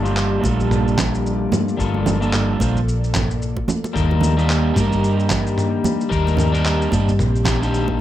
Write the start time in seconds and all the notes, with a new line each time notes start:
Already playing: G1 F3 A#3 G4 D5
0.02 G3 A#3 D4 F4 G4, shaker
0.17 clap, shaker
0.40 G3 A#3 D4 F4
0.44 A#1 A4, kick, high conga, shaker
0.59 kick, shaker
0.71 mid tom, shaker
0.88 shaker
0.98 kick, clap, low conga, shaker
1.15 shaker
1.26 shaker
1.52 mid tom, high conga, low conga, shaker
1.69 shaker
1.77 G1 G3 A#3 D4 F4 A4, kick, shaker
1.94 high conga
2.06 high conga, low conga, shaker
2.20 G3 A#3 D4 F4 A4, shaker
2.33 clap, mid tom, shaker
2.59 A#1 G3 A#3 D4 F4 C5, kick, muted conga, high conga, shaker
2.76 kick, shaker
2.88 shaker
3.04 shaker
3.14 kick, clap, mid tom, low conga, shaker
3.31 shaker
3.42 shaker
3.57 kick, muted conga
3.68 high conga, low conga, shaker
3.84 muted conga, shaker
3.93 D#2 D#3 G3 A#3 D4 D#4 G4 A#4, kick, mid tom, shaker
4.11 high conga
4.21 high conga, low conga, shaker
4.37 G3 A#3 D4 D#4 G4, shaker
4.50 clap, shaker
4.74 G2 G3 A#3 D4 D#4, kick, mid tom, high conga, shaker
4.78 A#4
4.92 kick, shaker
5.04 shaker
5.20 shaker
5.30 kick, clap, low conga, shaker
5.47 shaker
5.58 mid tom, shaker
5.84 high conga, low conga, shaker
6.01 shaker
6.09 D#2 G3 A#3 C4 D4 D#4 A#4, kick, shaker
6.27 high conga, shaker
6.37 mid tom, high conga, low conga, shaker
6.52 G3 A#3 D4 D#4 A#4, shaker
6.65 clap, shaker
6.82 shaker
6.91 G2 G3 A#3 D4 D#4 D5, kick, muted conga, high conga, shaker
7.08 kick, shaker
7.19 A#1, mid tom, shaker
7.36 shaker
7.45 G3 A#3 D4 D#4 G4, kick, clap, low conga, shaker
7.60 G3 A#3 D4 D#4, shaker
7.64 G4
7.74 shaker
7.88 kick, muted conga